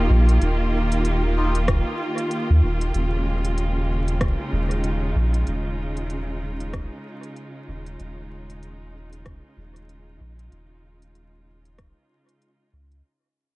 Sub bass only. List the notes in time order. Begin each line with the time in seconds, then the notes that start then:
0.10 A#1
0.42 D#1
2.50 D#2
2.63 D#1
2.94 D#1
4.53 D#1
5.16 A#1
7.68 D#1
8.00 D#1
9.57 D#1
10.20 A#1
10.52 D#1
12.73 C#2